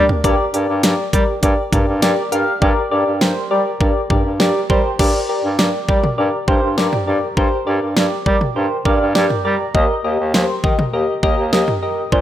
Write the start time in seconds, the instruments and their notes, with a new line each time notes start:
Already playing: synth keys D4 G4 A#4 D5
0.09 floor tom
0.24 bass clarinet G2, synth keys G4 A#4 D5, kick, closed hi-hat
0.54 bass clarinet G2, synth keys G4 A#4 D5, closed hi-hat
0.69 bass clarinet G2
0.83 bass clarinet G2, synth keys G4 A#4 D5, snare, closed hi-hat
1.13 bass clarinet G3, synth keys G4 A#4 D5, kick, closed hi-hat
1.43 bass clarinet G2, synth keys G4 A#4 D5, kick, closed hi-hat
1.73 bass clarinet G2, synth keys G4 A#4 D5, kick, closed hi-hat, mid tom
1.88 bass clarinet G2
2.02 bass clarinet G2, synth keys G4 A#4 D5, snare, closed hi-hat
2.32 bass clarinet G2, synth keys G4 A#4 F5, closed hi-hat
2.62 bass clarinet G2, synth keys G4 A#4 D5, kick
2.91 bass clarinet G2, synth keys G4 A#4 D5
3.06 bass clarinet G2
3.21 bass clarinet G2, synth keys G4 A#4 C5, snare
3.51 bass clarinet G3, synth keys G4 A#4 D5
3.81 bass clarinet G2, synth keys G4 A#4 D5, kick
4.10 bass clarinet G2, synth keys G4 A#4 D5, kick, mid tom
4.25 bass clarinet G2
4.40 bass clarinet G2, synth keys G4 A#4 D5, snare
4.70 bass clarinet G3, synth keys G4 A#4 C5, kick
4.99 bass clarinet G2, synth keys G4 A#4 D5, kick, crash
5.29 synth keys G4 A#4 D5
5.44 bass clarinet G2
5.59 bass clarinet G2, synth keys G4 A#4 D5, snare
5.88 bass clarinet G3, synth keys G4 A#4 D5, kick
6.04 mid tom
6.18 bass clarinet G2, synth keys G4 A#4 D5
6.48 bass clarinet G2, synth keys G4 A#4 C5, kick
6.63 bass clarinet G2
6.78 bass clarinet G2, synth keys G4 A#4 D5, snare
6.93 mid tom
7.07 bass clarinet G2, synth keys G4 A#4 D5
7.37 bass clarinet G2, synth keys G4 A#4 C5, kick
7.67 bass clarinet G2, synth keys G4 A#4 D5
7.82 bass clarinet G2
7.96 bass clarinet G2, synth keys G4 A#4 D5, snare
8.26 bass clarinet G3, synth keys G4 A#4 D5, kick
8.41 mid tom
8.56 bass clarinet G2, synth keys G4 A#4 C5
8.85 bass clarinet G2, synth keys G4 A#4 D5 F5, kick
9.00 bass clarinet G2
9.15 bass clarinet G2, synth keys G4 A#4 D5 G5, snare
9.30 mid tom
9.45 bass clarinet G3, synth keys G4 A#4 D5 A#5
9.75 bass clarinet D#2, synth keys G4 A#4 D#5, kick
10.04 bass clarinet D#2, synth keys G4 A#4 D#5
10.19 bass clarinet D#2
10.34 bass clarinet D#2, synth keys G4 A#4 C5, snare
10.64 bass clarinet D#3, synth keys G4 A#4 D#5, kick
10.79 mid tom
10.93 bass clarinet D#2, synth keys G4 A#4 D#5
11.23 bass clarinet D#2, synth keys G4 A#4 D#5, kick
11.38 bass clarinet D#2
11.53 bass clarinet D#2, synth keys G4 A#4 D#5, snare
11.68 mid tom
11.83 synth keys G4 A#4 D#5
12.12 bass clarinet A#2, synth keys D4 A#4 C5, kick